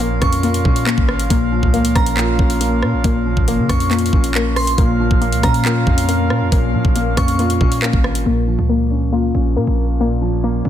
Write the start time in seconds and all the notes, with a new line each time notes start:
Already playing: A#1 A#2 F3 C#4 F4 A#4 F5
0.00 A#3, closed hi-hat
0.21 F2 C#4 C#6, kick, cross-stick, closed hi-hat
0.33 closed hi-hat
0.43 A#3 F4, closed hi-hat
0.54 closed hi-hat
0.65 A#2 C#4, kick
0.76 closed hi-hat
0.86 A#3, clap
0.98 G#1, kick
1.09 cross-stick
1.19 closed hi-hat
1.30 A#1 A#2 A#3, kick, closed hi-hat
1.52 F3
1.63 C#2, kick
1.74 A#3, closed hi-hat
1.85 closed hi-hat
1.95 A#1 C#4 A#5, kick, cross-stick, closed hi-hat
2.06 closed hi-hat
2.17 A#3 F4, clap
2.39 A#1 C#4, kick
2.50 closed hi-hat
2.61 A#3, closed hi-hat
2.83 A#2, cross-stick
2.93 A#1
3.04 A#1 A#2 A#3, kick, closed hi-hat
3.26 F3
3.37 G#1, kick
3.48 A#3, closed hi-hat
3.59 C#3
3.69 F2 C#4 C#6, kick, cross-stick, closed hi-hat
3.80 closed hi-hat
3.91 A#3 F4, clap, closed hi-hat
3.99 closed hi-hat
4.06 closed hi-hat
4.13 A#1 C#4, kick
4.24 closed hi-hat
4.35 A#3, clap
4.56 C6, cross-stick, open hi-hat
4.67 closed hi-hat
4.78 A#1 A#2 A#3 C#4 F4 A#4 F5, kick, closed hi-hat
5.00 F3
5.11 A#1, kick
5.21 A#3, closed hi-hat
5.33 C#2, closed hi-hat
5.43 A#2 C#4 A#5, kick, cross-stick, closed hi-hat
5.54 closed hi-hat
5.65 A#3 F4, clap
5.87 F2 C#4, kick
5.98 closed hi-hat
6.08 A#3, closed hi-hat
6.30 A#2, cross-stick
6.41 F2
6.52 A#1 A#2 A#3, kick, closed hi-hat
6.74 A#2 F3
6.85 A#1, kick
6.95 A#3, closed hi-hat
7.17 F2 C#4 C#6, kick, cross-stick, closed hi-hat
7.28 closed hi-hat
7.39 A#3 F4, closed hi-hat
7.50 closed hi-hat
7.61 A#2 C#4, kick
7.72 closed hi-hat
7.82 A#3, clap
7.93 G#1, kick
8.04 cross-stick
8.15 closed hi-hat
8.26 A#1 A#2 A#3
8.48 F3
8.59 C#2
8.69 A#3
8.91 C#4
9.12 A#3 F4
9.35 A#1 C#4
9.56 A#2 A#3
9.67 A#1
10.00 A#2 A#3
10.21 F3
10.44 A#3
10.65 F2 C#4